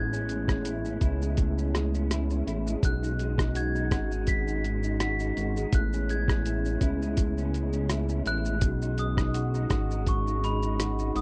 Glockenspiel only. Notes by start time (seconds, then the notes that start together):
Already playing: G#6
2.85 F#6
3.57 G#6
4.28 B6
5.01 B6
5.75 F#6
6.11 G#6
8.27 F#6
8.99 D#6
10.09 C#6
10.44 B5
11.16 D#6